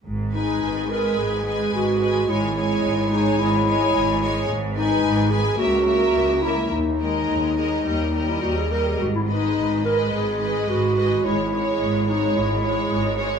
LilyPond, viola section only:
\new Staff \with { instrumentName = "Viola section" } { \clef bass \time 4/4 \key gis \minor \tempo 4 = 108 r8 gis4 gis4 gis4 gis8 | gis8 gis4 gis4 gis4 gis8 | r8 gis4 gis8 ais8 ais4 ais8 | r8 gis4 gis8 g8 g4 g8 |
r8 gis4 gis4 gis4 gis8 | gis8 gis4 gis4 gis4 gis8 | }